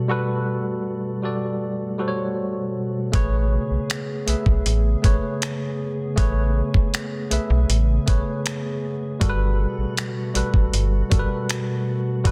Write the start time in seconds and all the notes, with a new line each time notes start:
Already playing: B2 G3 A3 F#4 A4 B4 D5
0.08 G3 F#4 A4 B4
1.22 G3 F#4 A4 D5
1.98 G3 F#4 A4 C5
2.08 C#5
3.12 A1 C#3 A3 B3 G#4 B4 C#5, kick, closed hi-hat
3.71 B1
3.90 finger snap, closed hi-hat
4.26 B1 A3 G#4 B4 E5, closed hi-hat
4.46 B1, kick
4.66 A1, closed hi-hat
5.02 A1 A3 G#4 B4 C#5, kick, closed hi-hat
5.42 finger snap, closed hi-hat
6.16 A1 A3 G#4 B4 C#5, kick, closed hi-hat
6.74 B1, kick
6.94 finger snap, closed hi-hat
7.30 B1 A3 G#4 B4 E5, closed hi-hat
7.50 B1
7.69 A1, closed hi-hat
8.06 A1 A3 G#4 B4 C#5, kick, closed hi-hat
8.46 finger snap, closed hi-hat
9.20 G1 B2 G3 A3 F#4 A4 A#4, kick, closed hi-hat
9.30 B4
9.78 A1
9.97 finger snap, closed hi-hat
10.34 A1 G3 F#4 A4 B4, closed hi-hat
10.54 A1, kick
10.73 G1, closed hi-hat
11.10 G1 G3 F#4 A4 A#4, kick, closed hi-hat
11.19 B4
11.49 finger snap, closed hi-hat
12.24 G1 G3 F#4 A4 B4, kick, closed hi-hat